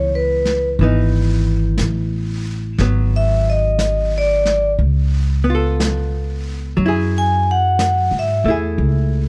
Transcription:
Already playing: C#2 E3 B3 D#4 C#5
0.15 B4
0.45 snare
0.78 G#1 E3, brush sweep
0.83 B3 D#4
1.78 A1, brush sweep, snare, hi-hat pedal
2.78 G#1 F#3 B3, brush sweep, snare
3.16 E5
3.50 D#5
3.79 brush sweep, snare, hi-hat pedal
4.18 D5
4.45 snare
4.79 C#2, brush sweep
5.44 B3
5.50 F4
5.55 A4
5.80 brush sweep, snare, hi-hat pedal
6.77 F#2 F#3, brush sweep
6.86 E4 G#4
7.18 G#5
7.51 F#5
7.79 brush sweep, snare, hi-hat pedal
8.11 G#2
8.19 E5
8.44 E2 A3 E4
8.50 G#4
8.78 C#2, brush sweep

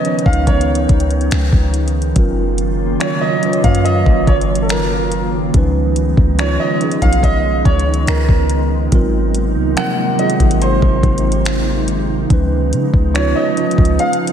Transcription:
Already playing: C#3 D#3 F3 G#3 B3 C#4 D#4 B4 D#5
0.04 F3 C#4 D#4, closed hi-hat
0.08 C#5
0.19 closed hi-hat
0.26 C#2 F5, kick
0.33 closed hi-hat
0.47 C#5, kick, closed hi-hat
0.61 closed hi-hat
0.75 closed hi-hat
0.89 C#2, kick, closed hi-hat
1.00 closed hi-hat
1.11 closed hi-hat
1.21 closed hi-hat
1.31 C#2, finger snap, closed hi-hat
1.53 C#2, kick
1.74 closed hi-hat
1.88 closed hi-hat
2.02 closed hi-hat
2.15 F#1 F#3 A#3 C#4 F4, kick, closed hi-hat
2.19 A#4
2.58 closed hi-hat
3.00 F#3 C#4 F4 C#5, finger snap, closed hi-hat
3.04 C#5
3.21 D#5
3.42 F#3 C#4 F4 B4, closed hi-hat
3.52 C#5, closed hi-hat
3.64 F#2 F5, kick, closed hi-hat
3.75 closed hi-hat
3.85 D#5, closed hi-hat
4.06 F#1, kick
4.27 C#5, kick, closed hi-hat
4.41 closed hi-hat
4.55 closed hi-hat
4.62 A4
4.69 A#4, finger snap, closed hi-hat
5.12 closed hi-hat
5.53 C#2 F3 G#3 B3 C#4 D#4 B4, kick, closed hi-hat
5.96 closed hi-hat
6.17 C#2, kick
6.37 F3 C#4 D#4 F4 C#5, finger snap, closed hi-hat
6.60 D#5
6.80 F3 C#4 D#4 G#4, closed hi-hat
6.91 closed hi-hat
7.02 B1 F5, kick, closed hi-hat
7.13 closed hi-hat
7.23 D#5, kick, closed hi-hat
7.65 C#2 C#5, kick, closed hi-hat
7.79 closed hi-hat
7.94 closed hi-hat
8.07 C#2 A#4, finger snap, closed hi-hat
8.29 C#2, kick
8.49 closed hi-hat
8.91 G#1 C3 D#3 F#3 G#3 A#3 C4 D#4 F4 A#4, kick, closed hi-hat
9.35 closed hi-hat
9.56 C2
9.75 F3 F#3 C4 A#4 F#5, finger snap, closed hi-hat
10.18 F#3 C4 F4 G#4 D#5, closed hi-hat
10.30 closed hi-hat
10.40 G#1, kick, closed hi-hat
10.51 closed hi-hat
10.62 C5, closed hi-hat
10.82 G#1, kick
11.03 G#1, kick, closed hi-hat
11.18 closed hi-hat
11.32 closed hi-hat
11.45 finger snap, closed hi-hat
11.88 closed hi-hat
12.29 C#2 C#3 F3 B3 C#4 D#4 B4, kick, closed hi-hat
12.72 C#3, closed hi-hat
12.94 C#2, kick
13.14 F3 C#4 D#4 F4 C#5, finger snap, closed hi-hat
13.36 D#5
13.56 F3 C#4 D#4 F4, closed hi-hat
13.71 closed hi-hat
13.78 C#2, kick
13.85 closed hi-hat
13.99 F5, closed hi-hat
14.13 closed hi-hat
14.27 closed hi-hat

